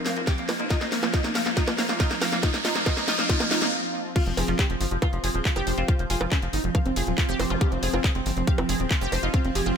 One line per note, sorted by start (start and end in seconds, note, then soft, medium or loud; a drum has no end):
0.00 4.15 F3 medium
0.00 4.15 C4 medium
0.00 riser medium
0.06 0.10 A#3 medium
0.06 0.13 F5 medium
0.06 snare medium
0.06 open hi-hat loud
0.16 0.21 A#3 medium
0.16 0.24 F4 medium
0.16 closed hi-hat soft
0.27 0.32 G4 medium
0.27 kick loud
0.27 snare medium
0.27 closed hi-hat medium
0.38 0.43 A#3 medium
0.38 closed hi-hat soft
0.49 0.54 A#3 medium
0.49 0.53 D#4 medium
0.49 snare medium
0.49 open hi-hat loud
0.49 high bongo medium
0.60 0.64 A#3 medium
0.60 0.67 D#4 medium
0.60 closed hi-hat soft
0.70 0.78 D#4 loud
0.70 0.75 F4 medium
0.70 kick loud
0.70 snare loud
0.70 closed hi-hat loud
0.81 0.86 A#3 medium
0.81 0.89 D#4 medium
0.81 snare medium
0.81 closed hi-hat soft
0.92 0.97 A#3 medium
0.92 1.00 F5 medium
0.92 snare medium
0.92 open hi-hat loud
1.03 1.07 A#3 medium
1.03 1.10 F4 medium
1.03 snare medium
1.03 closed hi-hat soft
1.03 high bongo soft
1.14 1.21 D#4 loud
1.14 1.18 F4 loud
1.14 kick loud
1.14 snare medium
1.14 closed hi-hat medium
1.24 1.29 A#3 medium
1.24 1.32 D#4 medium
1.24 snare medium
1.24 closed hi-hat soft
1.35 1.40 A#3 medium
1.35 1.43 F5 medium
1.35 snare loud
1.35 open hi-hat loud
1.46 1.51 A#3 medium
1.46 1.53 F4 medium
1.46 snare medium
1.46 closed hi-hat soft
1.57 1.64 D#4 loud
1.57 1.61 F4 loud
1.57 kick loud
1.57 snare medium
1.57 closed hi-hat medium
1.68 1.72 A#3 medium
1.68 1.75 D#4 medium
1.68 snare medium
1.68 closed hi-hat soft
1.68 high bongo medium
1.78 1.83 A#3 medium
1.78 1.86 F5 medium
1.78 snare loud
1.78 open hi-hat loud
1.89 1.94 A#3 medium
1.89 1.97 F4 medium
1.89 snare medium
1.89 closed hi-hat soft
2.00 2.07 D#4 loud
2.00 2.05 F4 loud
2.00 kick loud
2.00 snare loud
2.00 closed hi-hat medium
2.11 2.15 A#3 medium
2.11 2.18 D#4 medium
2.11 snare medium
2.11 closed hi-hat soft
2.22 2.26 A#3 medium
2.22 2.29 F5 medium
2.22 snare loud
2.22 open hi-hat loud
2.22 high bongo soft
2.32 2.37 A#3 medium
2.32 2.40 F4 medium
2.32 snare medium
2.32 closed hi-hat soft
2.43 2.51 D#4 loud
2.43 2.48 F4 loud
2.43 kick loud
2.43 snare loud
2.43 closed hi-hat loud
2.54 2.59 A#3 medium
2.54 2.61 D#4 medium
2.54 snare medium
2.54 closed hi-hat soft
2.65 2.72 D#4 loud
2.65 2.69 F4 loud
2.65 snare loud
2.65 open hi-hat loud
2.75 2.80 A#3 medium
2.75 2.83 D#4 medium
2.75 snare medium
2.75 closed hi-hat soft
2.86 2.94 D#4 loud
2.86 2.91 F4 loud
2.86 kick loud
2.86 snare loud
2.86 closed hi-hat loud
2.86 high bongo medium
2.97 3.02 A#3 medium
2.97 3.05 D#4 medium
2.97 snare medium
2.97 closed hi-hat soft
3.08 3.15 D#4 loud
3.08 3.13 F4 loud
3.08 snare loud
3.08 open hi-hat loud
3.19 3.23 A#3 medium
3.19 3.26 D#4 medium
3.19 snare medium
3.19 closed hi-hat soft
3.29 3.37 D#4 loud
3.29 3.34 F4 loud
3.29 kick loud
3.29 snare loud
3.29 closed hi-hat medium
3.29 swell medium
3.40 3.45 A#3 medium
3.40 3.48 D#4 medium
3.40 snare medium
3.40 closed hi-hat soft
3.40 high bongo soft
3.51 3.59 D#4 loud
3.51 3.56 F4 loud
3.51 snare loud
3.51 open hi-hat loud
3.62 3.66 A#3 medium
3.62 3.69 D#4 medium
3.62 snare loud
3.62 closed hi-hat soft
4.16 9.77 F3 medium
4.16 9.77 C4 medium
4.16 4.20 F4 loud
4.16 4.23 F4 medium
4.16 kick loud
4.16 closed hi-hat medium
4.16 crash loud
4.27 4.33 F1 medium
4.27 4.31 F3 medium
4.27 closed hi-hat soft
4.37 4.43 F1 loud
4.37 4.42 F3 medium
4.37 4.45 G#4 medium
4.37 open hi-hat loud
4.37 high bongo soft
4.48 4.54 F1 medium
4.48 4.53 F3 medium
4.48 4.53 F4 medium
4.48 closed hi-hat soft
4.59 4.64 G4 medium
4.59 kick loud
4.59 clap loud
4.59 closed hi-hat medium
4.70 4.76 F1 medium
4.70 4.74 F3 medium
4.70 closed hi-hat soft
4.80 4.87 G1 loud
4.80 4.85 F3 medium
4.80 open hi-hat loud
4.91 4.97 F1 medium
4.91 4.96 F3 medium
4.91 closed hi-hat soft
5.02 5.07 F4 loud
5.02 5.10 F5 medium
5.02 kick loud
5.02 closed hi-hat medium
5.02 high bongo medium
5.13 5.19 F1 medium
5.13 5.18 F3 medium
5.13 closed hi-hat soft
5.24 5.30 F1 loud
5.24 5.28 F3 medium
5.24 5.31 G#4 medium
5.24 open hi-hat loud
5.34 5.41 D#1 loud
5.34 5.39 F3 medium
5.34 closed hi-hat soft
5.45 5.53 F4 medium
5.45 kick loud
5.45 clap loud
5.45 closed hi-hat medium
5.56 5.62 F1 medium
5.56 5.61 F3 medium
5.56 5.66 G4 loud
5.56 closed hi-hat soft
5.56 high bongo soft
5.67 5.73 F1 loud
5.67 5.72 F3 medium
5.67 5.74 C5 medium
5.67 open hi-hat loud
5.78 5.84 F1 medium
5.78 5.82 C4 loud
5.78 5.82 F4 medium
5.78 closed hi-hat soft
5.88 5.93 F3 medium
5.88 5.96 F4 medium
5.88 kick loud
5.88 closed hi-hat medium
5.99 6.05 F1 medium
5.99 6.04 F3 medium
5.99 closed hi-hat soft
6.10 6.16 F1 loud
6.10 6.15 F4 medium
6.10 6.18 G#4 medium
6.10 open hi-hat loud
6.21 6.27 F1 loud
6.21 6.25 F3 medium
6.21 6.25 F4 medium
6.21 high bongo medium
6.32 6.36 C#4 medium
6.32 kick loud
6.32 clap loud
6.32 closed hi-hat medium
6.42 6.48 F1 medium
6.42 6.47 F3 medium
6.42 closed hi-hat soft
6.53 6.59 G1 loud
6.53 6.58 D#4 loud
6.53 open hi-hat loud
6.64 6.70 F1 medium
6.64 6.69 F3 medium
6.75 6.79 F3 medium
6.75 6.82 F5 medium
6.75 kick loud
6.75 closed hi-hat medium
6.75 high bongo soft
6.86 6.92 F1 medium
6.86 6.90 C4 medium
6.86 closed hi-hat soft
6.96 7.02 F1 loud
6.96 7.01 F3 medium
6.96 7.04 G#4 medium
6.96 open hi-hat loud
7.07 7.13 D#1 loud
7.07 7.12 F3 medium
7.07 closed hi-hat soft
7.18 7.25 F4 medium
7.18 7.23 F4 medium
7.18 kick loud
7.18 clap loud
7.18 closed hi-hat medium
7.29 7.35 F1 medium
7.29 7.33 F3 medium
7.29 7.39 G4 loud
7.29 closed hi-hat soft
7.39 7.46 F1 loud
7.39 7.44 F3 medium
7.39 7.47 C5 medium
7.39 open hi-hat loud
7.39 high bongo medium
7.50 7.56 F1 medium
7.50 7.55 F3 medium
7.50 7.55 F4 medium
7.50 zap medium
7.61 7.69 F4 medium
7.61 7.66 G4 loud
7.61 kick loud
7.61 closed hi-hat medium
7.72 7.78 F1 medium
7.72 7.77 C4 medium
7.72 closed hi-hat soft
7.83 7.89 F1 loud
7.83 7.87 C4 medium
7.83 7.90 G#4 medium
7.83 open hi-hat loud
7.93 8.00 F1 medium
7.93 7.98 C4 medium
7.93 7.98 F4 medium
7.93 closed hi-hat soft
7.93 high bongo soft
8.04 8.09 G#4 loud
8.04 kick loud
8.04 clap loud
8.04 closed hi-hat medium
8.15 8.21 F1 medium
8.15 8.20 C4 medium
8.15 closed hi-hat soft
8.26 8.32 G1 loud
8.26 8.31 C4 medium
8.26 open hi-hat loud
8.37 8.43 F1 medium
8.37 8.41 C4 medium
8.37 closed hi-hat soft
8.47 8.52 G4 loud
8.47 8.55 F5 medium
8.47 kick loud
8.47 closed hi-hat medium
8.58 8.64 F1 medium
8.58 8.63 C4 medium
8.58 closed hi-hat soft
8.58 high bongo medium
8.69 8.75 F1 loud
8.69 8.74 C4 medium
8.69 8.77 G#4 medium
8.69 open hi-hat loud
8.80 8.86 D#1 medium
8.80 8.84 C4 medium
8.80 closed hi-hat soft
8.91 8.98 F4 medium
8.91 kick loud
8.91 clap loud
8.91 closed hi-hat medium
9.01 9.07 F1 medium
9.01 9.06 C4 medium
9.01 9.12 G4 loud
9.01 closed hi-hat soft
9.12 9.18 F1 loud
9.12 9.17 C4 medium
9.12 9.20 C5 medium
9.12 open hi-hat loud
9.12 high bongo soft
9.23 9.29 F1 medium
9.23 9.28 D#4 loud
9.23 9.27 F4 medium
9.23 closed hi-hat soft
9.34 9.38 C4 medium
9.34 9.41 F4 medium
9.34 kick loud
9.34 closed hi-hat medium
9.45 9.51 F1 medium
9.45 9.49 C4 medium
9.45 closed hi-hat soft
9.55 9.61 F1 loud
9.55 9.60 G4 medium
9.55 9.63 G#4 medium
9.55 open hi-hat loud
9.66 9.72 F1 medium
9.66 9.71 C4 medium
9.66 9.71 F4 medium
9.66 closed hi-hat soft